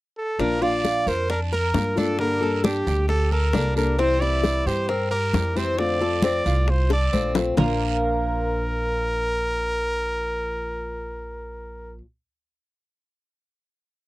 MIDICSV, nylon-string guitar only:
0, 0, Header, 1, 3, 480
1, 0, Start_track
1, 0, Key_signature, -2, "major"
1, 0, Tempo, 449438
1, 424, Time_signature, 4, 2, 24, 8
1, 15033, End_track
2, 0, Start_track
2, 0, Title_t, "Nylon-string guitar"
2, 0, Program_c, 0, 24
2, 412, Note_on_c, 0, 53, 71
2, 419, Note_on_c, 0, 58, 64
2, 427, Note_on_c, 0, 62, 78
2, 430, Note_on_c, 0, 65, 82
2, 643, Note_off_c, 0, 65, 0
2, 648, Note_off_c, 0, 53, 0
2, 652, Note_off_c, 0, 58, 0
2, 652, Note_off_c, 0, 62, 0
2, 655, Note_on_c, 0, 65, 67
2, 665, Note_on_c, 0, 62, 66
2, 677, Note_on_c, 0, 58, 49
2, 1370, Note_off_c, 0, 65, 0
2, 1375, Note_off_c, 0, 58, 0
2, 1376, Note_off_c, 0, 62, 0
2, 1845, Note_on_c, 0, 53, 44
2, 1856, Note_on_c, 0, 58, 43
2, 1863, Note_on_c, 0, 62, 46
2, 1870, Note_on_c, 0, 65, 47
2, 2076, Note_off_c, 0, 65, 0
2, 2085, Note_off_c, 0, 53, 0
2, 2087, Note_off_c, 0, 62, 0
2, 2089, Note_on_c, 0, 65, 60
2, 2090, Note_off_c, 0, 58, 0
2, 2099, Note_on_c, 0, 62, 55
2, 2111, Note_on_c, 0, 58, 54
2, 2327, Note_off_c, 0, 65, 0
2, 2332, Note_off_c, 0, 62, 0
2, 2334, Note_off_c, 0, 58, 0
2, 2334, Note_on_c, 0, 50, 64
2, 2343, Note_on_c, 0, 55, 74
2, 2346, Note_on_c, 0, 58, 70
2, 2351, Note_on_c, 0, 62, 74
2, 2356, Note_on_c, 0, 69, 68
2, 2558, Note_off_c, 0, 69, 0
2, 2567, Note_off_c, 0, 62, 0
2, 2569, Note_off_c, 0, 50, 0
2, 2570, Note_off_c, 0, 58, 0
2, 2571, Note_on_c, 0, 69, 70
2, 2573, Note_off_c, 0, 55, 0
2, 2580, Note_on_c, 0, 62, 63
2, 2583, Note_on_c, 0, 58, 58
2, 2590, Note_on_c, 0, 55, 58
2, 3287, Note_off_c, 0, 69, 0
2, 3290, Note_off_c, 0, 58, 0
2, 3291, Note_off_c, 0, 62, 0
2, 3299, Note_off_c, 0, 55, 0
2, 3773, Note_on_c, 0, 55, 48
2, 3787, Note_on_c, 0, 58, 47
2, 3790, Note_on_c, 0, 62, 50
2, 3797, Note_on_c, 0, 69, 51
2, 4005, Note_off_c, 0, 69, 0
2, 4008, Note_off_c, 0, 55, 0
2, 4009, Note_off_c, 0, 62, 0
2, 4015, Note_off_c, 0, 58, 0
2, 4017, Note_on_c, 0, 69, 59
2, 4022, Note_on_c, 0, 62, 69
2, 4031, Note_on_c, 0, 58, 62
2, 4034, Note_on_c, 0, 55, 52
2, 4246, Note_off_c, 0, 55, 0
2, 4249, Note_on_c, 0, 48, 70
2, 4250, Note_off_c, 0, 69, 0
2, 4252, Note_off_c, 0, 62, 0
2, 4254, Note_off_c, 0, 58, 0
2, 4254, Note_on_c, 0, 52, 61
2, 4259, Note_on_c, 0, 55, 65
2, 4265, Note_on_c, 0, 60, 79
2, 4270, Note_on_c, 0, 64, 76
2, 4481, Note_off_c, 0, 64, 0
2, 4485, Note_off_c, 0, 48, 0
2, 4486, Note_off_c, 0, 60, 0
2, 4488, Note_off_c, 0, 52, 0
2, 4490, Note_off_c, 0, 55, 0
2, 4494, Note_on_c, 0, 64, 68
2, 4499, Note_on_c, 0, 60, 62
2, 4509, Note_on_c, 0, 55, 57
2, 4515, Note_on_c, 0, 52, 57
2, 5207, Note_off_c, 0, 64, 0
2, 5213, Note_off_c, 0, 52, 0
2, 5214, Note_off_c, 0, 55, 0
2, 5227, Note_off_c, 0, 60, 0
2, 5697, Note_on_c, 0, 52, 47
2, 5708, Note_on_c, 0, 55, 44
2, 5713, Note_on_c, 0, 60, 49
2, 5719, Note_on_c, 0, 64, 54
2, 5919, Note_off_c, 0, 64, 0
2, 5928, Note_off_c, 0, 52, 0
2, 5928, Note_off_c, 0, 60, 0
2, 5932, Note_on_c, 0, 64, 65
2, 5934, Note_off_c, 0, 55, 0
2, 5941, Note_on_c, 0, 60, 60
2, 5945, Note_on_c, 0, 55, 59
2, 5953, Note_on_c, 0, 52, 53
2, 6165, Note_off_c, 0, 64, 0
2, 6168, Note_off_c, 0, 52, 0
2, 6170, Note_off_c, 0, 60, 0
2, 6172, Note_off_c, 0, 55, 0
2, 6172, Note_on_c, 0, 50, 68
2, 6179, Note_on_c, 0, 57, 73
2, 6187, Note_on_c, 0, 60, 74
2, 6191, Note_on_c, 0, 65, 76
2, 6402, Note_off_c, 0, 65, 0
2, 6405, Note_off_c, 0, 50, 0
2, 6408, Note_off_c, 0, 57, 0
2, 6413, Note_off_c, 0, 60, 0
2, 6415, Note_on_c, 0, 65, 66
2, 6431, Note_on_c, 0, 60, 61
2, 6435, Note_on_c, 0, 57, 53
2, 7126, Note_off_c, 0, 65, 0
2, 7130, Note_off_c, 0, 57, 0
2, 7131, Note_off_c, 0, 60, 0
2, 7602, Note_on_c, 0, 50, 43
2, 7614, Note_on_c, 0, 57, 51
2, 7617, Note_on_c, 0, 60, 48
2, 7626, Note_on_c, 0, 65, 50
2, 7835, Note_off_c, 0, 65, 0
2, 7840, Note_off_c, 0, 50, 0
2, 7846, Note_off_c, 0, 57, 0
2, 7847, Note_off_c, 0, 60, 0
2, 7848, Note_on_c, 0, 65, 61
2, 7859, Note_on_c, 0, 60, 66
2, 7871, Note_on_c, 0, 57, 54
2, 8082, Note_off_c, 0, 65, 0
2, 8085, Note_on_c, 0, 46, 70
2, 8088, Note_off_c, 0, 60, 0
2, 8094, Note_off_c, 0, 57, 0
2, 8095, Note_on_c, 0, 53, 72
2, 8104, Note_on_c, 0, 58, 66
2, 8111, Note_on_c, 0, 62, 72
2, 8117, Note_on_c, 0, 65, 65
2, 12834, Note_off_c, 0, 46, 0
2, 12843, Note_off_c, 0, 53, 0
2, 12853, Note_off_c, 0, 58, 0
2, 12860, Note_off_c, 0, 62, 0
2, 12866, Note_off_c, 0, 65, 0
2, 15033, End_track
3, 0, Start_track
3, 0, Title_t, "Muted nylon-string guitar strokes"
3, 1375, Note_on_c, 9, 29, 57
3, 1482, Note_off_c, 9, 29, 0
3, 3295, Note_on_c, 9, 29, 53
3, 3402, Note_off_c, 9, 29, 0
3, 5220, Note_on_c, 9, 29, 58
3, 5327, Note_off_c, 9, 29, 0
3, 7137, Note_on_c, 9, 29, 59
3, 7244, Note_off_c, 9, 29, 0
3, 15033, End_track
0, 0, End_of_file